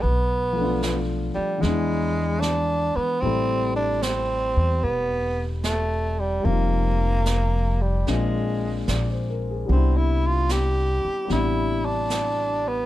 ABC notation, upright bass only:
X:1
M:4/4
L:1/8
Q:"Swing" 1/4=75
K:Am
V:1 name="Upright bass" clef=bass
B,,,3 z E,,3 z | A,,,3 E,, E,,,4 | F,,,4 _B,,,2 B,,,2 | C,,3 z A,,,4 |]